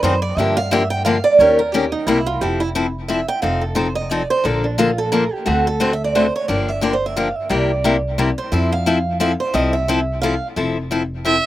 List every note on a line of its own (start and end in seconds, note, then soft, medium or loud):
0.03 0.31 F#2 medium
0.03 0.14 D#3 medium
0.03 0.14 F#3 medium
0.03 0.14 C4 medium
0.03 0.14 D#4 medium
0.03 0.14 G#4 loud
0.03 0.22 C5 medium
0.22 0.37 D5 loud
0.37 1.18 G2 loud
0.37 0.57 D3 medium
0.37 0.58 F3 medium
0.37 0.58 A#3 medium
0.37 0.58 D4 medium
0.37 0.58 G4 medium
0.37 0.56 E5 medium
0.57 0.70 F5 loud
0.71 0.81 D3 medium
0.71 0.82 F3 medium
0.71 0.82 A#3 medium
0.71 0.82 D4 medium
0.71 0.82 G4 loud
0.71 0.90 E5 loud
0.90 1.04 G5 loud
1.05 1.16 D3 medium
1.05 1.16 F3 medium
1.05 1.16 A#3 loud
1.05 1.16 D4 medium
1.05 1.16 G4 medium
1.05 1.24 F5 medium
1.24 1.39 D5 loud
1.39 1.93 D#2 loud
1.39 1.59 D#3 medium
1.39 1.59 A#3 medium
1.39 1.60 C#4 medium
1.39 1.60 G4 medium
1.39 1.60 A#4 medium
1.39 1.58 C#5 medium
1.59 1.72 A#4 medium
1.72 1.84 D#3 medium
1.72 1.84 A#3 medium
1.72 1.84 C#4 medium
1.72 1.92 G4 medium
1.72 1.84 G4 loud
1.72 1.84 A#4 loud
1.92 2.06 D#4 medium
2.07 2.34 C2 medium
2.07 2.18 C3 medium
2.07 2.18 G3 medium
2.07 2.18 A#3 medium
2.07 2.26 E4 medium
2.07 2.18 E4 medium
2.07 2.18 G4 medium
2.26 2.40 F4 medium
2.41 3.22 F1 medium
2.41 2.61 F3 medium
2.41 2.61 C4 medium
2.41 2.62 E4 medium
2.41 2.60 G4 medium
2.41 2.62 A4 medium
2.60 2.69 E4 medium
2.75 2.85 F3 medium
2.75 2.86 C4 medium
2.75 2.86 E4 medium
2.75 2.86 A4 medium
3.08 3.19 F3 medium
3.08 3.19 C4 medium
3.08 3.20 E4 medium
3.08 3.20 A4 medium
3.08 3.28 E5 medium
3.28 3.42 G5 loud
3.42 4.25 F1 medium
3.42 3.62 F3 medium
3.42 3.63 C4 medium
3.42 3.63 D#4 medium
3.42 3.63 A4 medium
3.42 3.62 F5 medium
3.61 3.75 A4 medium
3.75 3.86 F3 medium
3.75 3.87 C4 medium
3.75 3.87 D#4 medium
3.75 3.87 A4 medium
3.75 3.95 C5 medium
3.95 4.10 D#5 medium
4.10 4.21 F3 medium
4.10 4.22 C4 medium
4.10 4.22 D#4 medium
4.10 4.22 A4 medium
4.10 4.30 D5 medium
4.30 4.44 C5 loud
4.44 5.26 A#1 medium
4.44 4.64 D3 medium
4.44 4.65 F3 medium
4.44 4.65 A#3 medium
4.44 4.65 D4 medium
4.44 4.65 A4 medium
4.44 4.64 A#4 medium
4.64 4.78 D4 soft
4.78 4.89 D3 medium
4.78 4.89 F3 medium
4.78 4.89 A#3 loud
4.78 4.90 D4 medium
4.78 4.98 F4 medium
4.78 4.90 A4 medium
4.98 5.11 A4 medium
5.12 5.23 D3 medium
5.12 5.23 F3 medium
5.12 5.23 A#3 medium
5.12 5.23 D4 medium
5.12 5.24 A4 medium
5.12 5.32 A#4 loud
5.32 5.46 G4 medium
5.46 6.29 D2 loud
5.46 5.66 D3 medium
5.46 5.66 A3 medium
5.46 5.66 C4 medium
5.46 5.66 F#4 medium
5.46 5.67 A4 medium
5.67 5.80 A4 medium
5.80 5.91 D3 medium
5.80 5.91 A3 medium
5.80 5.91 C4 medium
5.80 5.91 F#4 medium
5.80 5.91 A4 medium
5.80 5.92 C5 medium
5.93 6.04 E5 medium
6.04 6.15 D5 medium
6.15 6.25 D3 medium
6.15 6.26 A3 medium
6.15 6.26 C4 medium
6.15 6.26 F#4 medium
6.15 6.26 A4 medium
6.15 6.35 C5 medium
6.36 6.48 C#5 medium
6.48 7.30 G1 medium
6.48 6.69 D3 medium
6.48 6.69 F3 medium
6.48 6.69 A#3 medium
6.48 6.69 D4 medium
6.48 6.69 G4 medium
6.48 6.68 D5 medium
6.68 6.83 E5 medium
6.81 6.93 D3 medium
6.81 6.93 F3 medium
6.81 6.93 A#3 medium
6.81 6.93 D4 medium
6.81 6.93 G4 medium
6.81 6.94 D5 medium
6.93 7.05 C5 medium
7.06 7.17 E5 medium
7.16 7.27 D3 medium
7.16 7.27 F3 medium
7.16 7.27 A#3 medium
7.16 7.28 D4 medium
7.16 7.28 G4 medium
7.16 7.37 F5 loud
7.37 7.50 E5 loud
7.49 8.32 C2 loud
7.49 7.70 C3 medium
7.49 7.70 G3 medium
7.49 7.70 A#3 medium
7.49 7.71 E4 medium
7.49 7.71 G4 medium
7.49 8.01 D5 medium
7.84 7.95 C3 medium
7.84 7.95 G3 medium
7.84 7.95 A#3 medium
7.84 7.95 E4 loud
7.84 7.95 G4 medium
8.18 8.29 C3 medium
8.18 8.29 G3 medium
8.18 8.29 A#3 medium
8.18 8.29 E4 medium
8.18 8.29 G4 medium
8.38 8.52 C5 medium
8.52 9.34 F2 loud
8.52 8.72 F3 medium
8.52 8.72 C4 medium
8.52 8.73 E4 medium
8.52 8.73 A4 medium
8.52 8.72 E5 medium
8.72 9.17 F5 loud
8.86 8.97 F3 medium
8.86 8.97 C4 medium
8.86 8.97 E4 loud
8.86 8.97 A4 medium
9.20 9.31 F3 medium
9.20 9.31 C4 medium
9.20 9.31 E4 medium
9.20 9.31 A4 loud
9.20 9.33 F5 medium
9.40 9.54 C5 medium
9.54 10.36 C2 medium
9.54 9.74 F3 medium
9.54 9.74 C4 medium
9.54 9.74 E4 medium
9.54 9.75 A4 medium
9.54 9.73 D#5 medium
9.73 10.18 E5 medium
9.88 9.99 F3 medium
9.88 9.99 C4 medium
9.88 9.99 E4 medium
9.88 10.00 A4 loud
10.22 10.33 F3 medium
10.22 10.34 C4 medium
10.22 10.34 E4 medium
10.22 10.34 A4 loud
10.22 10.47 F5 loud
10.56 11.38 F1 medium
10.56 10.76 F3 medium
10.56 10.77 C4 medium
10.56 10.77 E4 medium
10.56 10.77 A4 medium
10.91 11.01 F3 medium
10.91 11.01 C4 medium
10.91 11.02 E4 medium
10.91 11.02 A4 medium
11.25 11.35 F3 medium
11.25 11.35 C4 medium
11.25 11.36 E4 medium
11.25 11.36 A4 medium
11.25 11.44 E5 medium